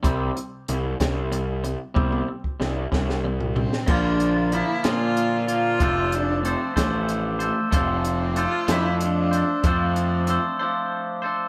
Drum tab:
CC |------------|------------|x-----------|------------|
HH |x-x-x-x-x-x-|------------|--x-x-x-x-x-|x-x-x-x-x-x-|
SD |------o-----|----o-oo---o|------o-----|------o-----|
T1 |------------|oo----------|------------|------------|
FT |------------|---------oo-|------------|------------|
BD |o-----o-----|o--o--o-----|o-----------|o-----o-----|

CC |------------|------------|
HH |x-x-x-x-x-x-|x-x-x-------|
SD |------o-----|------------|
T1 |------------|------------|
FT |------------|------------|
BD |o-----------|o-----------|